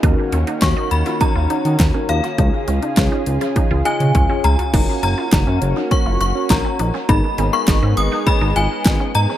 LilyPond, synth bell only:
\new Staff \with { instrumentName = "Synth bell" } { \time 4/4 \key fis \major \tempo 4 = 102 r4 cis'''8 b''8 ais''4. eis''8~ | eis''2~ eis''8 gis''4 ais''8~ | ais''8 ais''4 r8 cis'''8 cis'''8 ais''4 | b''8. cis'''8. dis'''8 b''8 gis''4 ais''8 | }